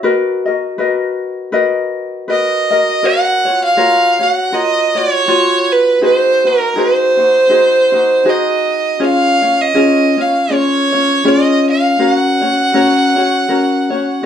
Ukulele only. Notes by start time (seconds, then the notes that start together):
0.03 F#4 A#4 B4 D#5
0.46 F#4 A#4 D#5
0.78 F#4 A#4 B4 D#5
1.52 F#4 A#4 B4 D#5
2.28 F#4 A#4 B4 D#5
2.71 F#4 A#4 D#5
3.03 F#4 A#4 C#5
3.45 F4 F#4 C#5
3.77 F4 F#4 A#4 C#5
4.19 F#4 C#5
4.52 F4 F#4 A#4 C#5
4.95 F4 F#4 C#5
5.28 F4 F#4 C#5
6.01 D#4 F#4 G#4 C5
6.45 D#4 F#4 C5
6.76 D#4 F#4 G#4 C5
7.17 D#4 F#4 C5
7.49 D#4 F#4 G#4 C5
7.92 D#4 F#4 C5
8.25 D#4 F#4 G#4 C5
9.00 C#4 F4 G#4 C#5
9.42 C#4 F4 C#5
9.75 C#4 F4 G#4 C#5
10.17 C#4 F4 C#5
10.49 C#4 F4 G#4 C#5
10.92 C#4 F4 C#5
11.24 C#4 F4 G#4 C#5
11.99 C#4 F#4 A#4 C#5
12.41 C#4 F#4 C#5
12.73 C#4 F#4 A#4 C#5
13.16 C#4 F#4 C#5
13.49 C#4 F#4 A#4 C#5
13.90 C#4 F#4 C#5